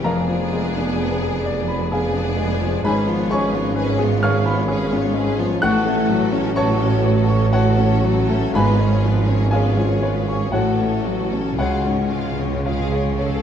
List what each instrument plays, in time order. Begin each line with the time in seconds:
0.04 tuba F1, double bass section F1, cello section F2, grand piano F2 A#4 F5 A#5, viola section B3, violin section G#4 D5
0.28 grand piano F3
0.53 grand piano G#3
0.75 grand piano D4
0.99 grand piano B4
1.22 grand piano G#4
1.46 grand piano D5
1.68 grand piano B5
1.91 viola section B3, grand piano G#4 F5 G#5, violin section G#4 D5
2.14 grand piano D4
2.37 grand piano G#3
2.60 grand piano F3
2.84 tuba G#1, double bass section G#1, grand piano G#2 B4 G#5 B5, cello section G#2, viola section C#4, violin section G#4 B4
3.07 grand piano F3, viola section B3, violin section F4 C#5
3.30 grand piano G#3 C#5 G#5 C#6, viola section C#4, violin section G#4 B4
3.53 viola section B3, grand piano C#4, violin section F4 C#5
3.76 viola section C#4, violin section G#4 B4, grand piano B4
3.99 viola section B3, violin section F4 C#5, grand piano G#4
4.23 viola section C#4, violin section G#4 B4, grand piano C#5 F5 C#6 F6
4.46 viola section B3, violin section F4 C#5, grand piano B5
4.68 viola section C#4, grand piano G#4, violin section G#4 B4
4.92 viola section B3, grand piano C#4, violin section F4 C#5
5.14 grand piano G#3, viola section C#4, violin section G#4 B4
5.38 grand piano F3, viola section B3, violin section F4 C#5
5.62 tuba A1, double bass section A1, grand piano A2 F#5 C#6 F#6, cello section A2, viola section A3, violin section F#4 A4
5.85 grand piano A3, viola section C#4, violin section A4 C#5
6.08 grand piano F#3, viola section A3, violin section F#4 A4
6.32 grand piano C#4, viola section C#4, violin section A4 C#5
6.55 viola section A3, violin section F#4 A4, grand piano C#5 A5 C#6
6.79 viola section C#4, grand piano F#4, violin section A4 C#5
7.02 viola section A3, violin section F#4 A4, grand piano C#5
7.26 viola section C#4, violin section A4 C#5, grand piano C#6
7.50 viola section A3, violin section F#4 A4, grand piano F#4 C#5 F#5
7.76 viola section C#4, grand piano C#4, violin section A4 C#5
8.02 grand piano F#3, viola section A3, violin section F#4 A4
8.28 grand piano A3, viola section C#4, violin section A4 C#5
8.54 tuba G#1, double bass section G#1, grand piano G#2 B4 G#5 B5, cello section G#2, viola section B3, violin section F4 B4
8.79 grand piano G#3, viola section C#4, violin section G#4 C#5
9.03 grand piano F3, viola section B3, violin section F4 B4
9.28 grand piano C#4, viola section C#4, violin section G#4 C#5
9.51 viola section B3, violin section F4 B4, grand piano G#4 C#5 F5 G#5
9.77 viola section C#4, grand piano F4, violin section G#4 C#5
10.02 viola section B3, violin section F4 B4, grand piano C#5
10.27 viola section C#4, violin section G#4 C#5, grand piano C#6
10.52 tuba A1, double bass section A1, cello section A2, grand piano A2 F#4 C#5 F#5, viola section A3, violin section F#4 A4
10.78 grand piano A3, viola section C#4, violin section A4 C#5
11.05 grand piano F#3, viola section A3, violin section F#4 A4
11.32 viola section C#4, grand piano C#4, violin section A4 C#5
11.58 tuba C#2, double bass section C#2, grand piano C#2 F#4 C#5 F#5, timpani C#3, cello section C#3, viola section F4, violin section G#4 F5
11.67 timpani C#3
11.75 timpani C#3
11.83 grand piano G#2, timpani C#3, viola section C#4, violin section F4 C#5
11.91 timpani C#3
11.99 timpani C#3
12.08 timpani C#3, grand piano G#3, violin section G#4
12.12 timpani C#3, viola section F4, violin section F5
12.32 timpani C#3
12.38 timpani C#3, grand piano C#4, viola section C#4, violin section F4 C#5
12.48 timpani C#3
12.56 timpani C#3
12.64 timpani C#3, grand piano F4 C#5 F5, viola section G#4, violin section G#4 F5
12.72 timpani C#3
12.80 timpani C#3
12.88 timpani C#3, grand piano G#4
12.92 timpani C#3, violin section F4 C#5
13.05 timpani C#3
13.13 timpani C#3
13.18 timpani C#3, violin section G#4 F5, viola section A4, grand piano C#5
13.29 timpani C#3
13.37 timpani C#3